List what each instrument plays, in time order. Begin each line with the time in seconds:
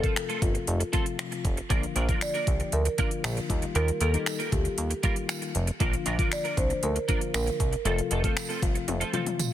Already playing: marimba A4
0.03 synth keys C3 F3 A3 F4, clean electric guitar A3 C4 F4 A4, kick, closed hi-hat
0.16 finger snap, muted clean electric guitar stroke, closed hi-hat
0.29 clean electric guitar A3 C4 F4 A4, closed hi-hat
0.41 analog synth bass G1, synth keys C3 F3 A3 F4, marimba F4, muted clean electric guitar stroke, kick, closed hi-hat
0.54 muted clean electric guitar stroke, closed hi-hat
0.67 analog synth bass F1, closed hi-hat
0.80 muted clean electric guitar stroke, closed hi-hat
0.93 synth keys C3 F3 A3 F4, clean electric guitar A3 C4 F4 A4, kick, closed hi-hat
1.06 muted clean electric guitar stroke, closed hi-hat
1.19 finger snap, muted clean electric guitar stroke, closed hi-hat
1.31 muted clean electric guitar stroke, closed hi-hat
1.45 analog synth bass F1, kick, closed hi-hat
1.57 muted clean electric guitar stroke, closed hi-hat
1.70 analog synth bass A#1, synth keys D3 F3 A#3 F4, clean electric guitar A#3 D4 F4 A#4, kick, closed hi-hat
1.83 closed hi-hat
1.95 analog synth bass A#1, clean electric guitar A#3 D4 F4 A#4, closed hi-hat
2.08 synth keys D3 F3 A#3 F4, clean electric guitar A#3 D4 F4 A#4, kick, closed hi-hat
2.21 marimba D5, finger snap, closed hi-hat, tambourine
2.34 clean electric guitar A#3 D4 F4 A#4, closed hi-hat
2.47 analog synth bass C2, synth keys D3 F3 A#3 G4, muted clean electric guitar stroke, kick, closed hi-hat
2.60 muted clean electric guitar stroke, closed hi-hat
2.72 analog synth bass D2, marimba A#4, closed hi-hat
2.85 muted clean electric guitar stroke, closed hi-hat
2.98 synth keys D3 F3 A#3 F4, clean electric guitar A#3 D4 F4 A#4, kick, closed hi-hat
3.11 muted clean electric guitar stroke, closed hi-hat
3.24 analog synth bass A#1, finger snap, muted clean electric guitar stroke, closed hi-hat, tambourine
3.37 muted clean electric guitar stroke, closed hi-hat
3.49 analog synth bass D#2, synth keys D#3 G3 A#3 F4, kick, closed hi-hat
3.62 muted clean electric guitar stroke, closed hi-hat
3.75 analog synth bass D#2, clean electric guitar G3 A#3 F4 A#4, marimba A#4, closed hi-hat
3.88 closed hi-hat
4.00 analog synth bass D#2, clean electric guitar G3 A#3 F4 A#4, marimba A4, closed hi-hat
4.13 synth keys D#3 G3 A#3 D#4, clean electric guitar G3 A#3 F4 A#4, closed hi-hat
4.26 finger snap, muted clean electric guitar stroke, closed hi-hat, tambourine
4.39 clean electric guitar G3 A#3 F4 A#4, closed hi-hat
4.52 analog synth bass D2, synth keys D#3 G3 A#3 F4, marimba G4, muted clean electric guitar stroke, kick, closed hi-hat
4.64 muted clean electric guitar stroke, closed hi-hat
4.78 analog synth bass D#2, closed hi-hat
4.90 muted clean electric guitar stroke, closed hi-hat
5.03 synth keys D#3 G3 A#3 F4, clean electric guitar G3 A#3 F4 A#4, kick, closed hi-hat
5.16 muted clean electric guitar stroke, closed hi-hat
5.29 finger snap, muted clean electric guitar stroke, closed hi-hat, tambourine
5.42 muted clean electric guitar stroke, closed hi-hat
5.55 analog synth bass F1, closed hi-hat
5.67 muted clean electric guitar stroke, closed hi-hat
5.80 analog synth bass A#1, synth keys D3 F3 A#3 F4, clean electric guitar A#3 D4 F4 A#4, kick, closed hi-hat
5.93 closed hi-hat
6.06 analog synth bass A#1, clean electric guitar A#3 D4 F4 A#4, closed hi-hat
6.19 synth keys D3 F3 A#3 F4, clean electric guitar A#3 D4 F4 A#4, kick, closed hi-hat
6.32 marimba D5, finger snap, muted clean electric guitar stroke, closed hi-hat, tambourine
6.44 clean electric guitar A#3 D4 F4 A#4, closed hi-hat
6.57 analog synth bass C2, synth keys D3 F3 A#3 D4, marimba C5, muted clean electric guitar stroke, kick, closed hi-hat
6.70 muted clean electric guitar stroke, closed hi-hat
6.83 analog synth bass D2, marimba A#4, closed hi-hat
6.96 muted clean electric guitar stroke, closed hi-hat
7.08 synth keys D3 F3 A#3 F4, clean electric guitar A#3 D4 F4 A#4, kick, closed hi-hat
7.21 muted clean electric guitar stroke, closed hi-hat
7.34 analog synth bass A#1, marimba A#4, finger snap, muted clean electric guitar stroke, closed hi-hat, tambourine
7.46 muted clean electric guitar stroke, closed hi-hat
7.60 analog synth bass C2, kick, closed hi-hat
7.72 muted clean electric guitar stroke, closed hi-hat
7.85 analog synth bass F1, synth keys C3 F3 A3 F4, clean electric guitar A3 C4 F4 A4, marimba A4, closed hi-hat
7.98 closed hi-hat
8.11 analog synth bass F1, clean electric guitar A3 C4 F4 A4, closed hi-hat
8.24 synth keys C3 F3 A3 F4, clean electric guitar A3 C4 F4 A4, kick, closed hi-hat
8.37 finger snap, closed hi-hat, tambourine
8.49 clean electric guitar A3 C4 F4 A4, closed hi-hat
8.62 analog synth bass G1, synth keys C3 F3 A3 F4, kick, closed hi-hat
8.75 muted clean electric guitar stroke, closed hi-hat
8.88 analog synth bass F1, muted clean electric guitar stroke, closed hi-hat, high tom
9.00 clean electric guitar A3 C4 F4 A4, closed hi-hat
9.13 synth keys C3 F3 A3 F4, clean electric guitar A3 C4 F4 A4, closed hi-hat, mid tom
9.26 muted clean electric guitar stroke, closed hi-hat, mid tom
9.39 muted clean electric guitar stroke, closed hi-hat, mid tom, tambourine